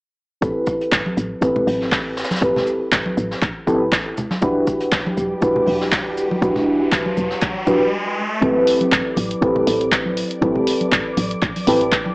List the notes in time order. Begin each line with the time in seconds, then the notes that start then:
0.41 A1 C4 E4 G4 A4 B4, kick, shaker
0.66 kick, shaker
0.81 closed hi-hat
0.92 G1, kick, snare, clap, shaker
1.06 high conga
1.17 A1, shaker
1.41 A1 C4 E4 G4 A4 B4, kick, shaker
1.56 low conga
1.67 A1, open hi-hat, high conga
1.81 snare
1.92 kick, snare, clap, shaker
2.17 snare, shaker
2.24 snare, shaker
2.31 snare, high conga, shaker
2.36 snare, shaker
2.41 A1 C4 E4 G4 A4 B4, kick, shaker
2.56 snare, low conga
2.67 shaker
2.92 G1, kick, snare, clap, shaker
3.06 high conga
3.17 A1, shaker
3.31 snare
3.42 A1, kick, clap, shaker
3.67 A1 C4 E4 G4 A4 B4, kick, high conga, shaker
3.92 kick, snare, clap, shaker
4.17 low conga, shaker
4.30 snare, high conga
4.41 E1 G3 D4 E4 F#4 G4 B4, kick, riser, shaker
4.67 kick, shaker
4.80 closed hi-hat
4.92 D1, kick, snare, clap, shaker
5.06 high conga
5.17 E1, shaker
5.41 E1 D4 E4 F#4 G4 B4, kick, shaker
5.56 low conga
5.66 E1, open hi-hat, high conga
5.81 snare
5.92 kick, snare, clap, shaker
6.17 shaker
6.31 high conga
6.41 E1 D4 E4 F#4 G4 B4, kick, shaker
6.56 snare, low conga
6.92 D1, kick, snare, clap, shaker
7.06 high conga
7.17 E1, shaker
7.30 snare
7.41 kick, clap, shaker
7.67 D4 E4 F#4 G4 B4, kick, high conga, shaker
8.41 A1 C4 E4 G4 A4 B4 D5 D6, kick, closed hi-hat, high conga
8.67 open hi-hat
8.81 closed hi-hat, high conga
8.92 G1, kick, clap, closed hi-hat
9.17 A1, open hi-hat, high conga
9.31 closed hi-hat
9.41 A1 C4 E4 G4 A4 B4, kick, closed hi-hat
9.56 high conga, low conga
9.67 A1, open hi-hat
9.81 closed hi-hat
9.92 kick, clap, closed hi-hat
10.06 high conga
10.17 open hi-hat
10.31 closed hi-hat
10.41 A1 C4 E4 G4 A4 B4, kick, closed hi-hat, high conga
10.56 low conga
10.67 open hi-hat
10.81 closed hi-hat, high conga
10.92 G1, kick, clap, closed hi-hat
11.17 A1, open hi-hat, high conga
11.31 closed hi-hat
11.42 A1, kick, clap, closed hi-hat
11.56 open hi-hat, high conga
11.67 A1 C4 E4 G4 A4 B4, open hi-hat
11.81 closed hi-hat
11.92 kick, clap, closed hi-hat
12.06 high conga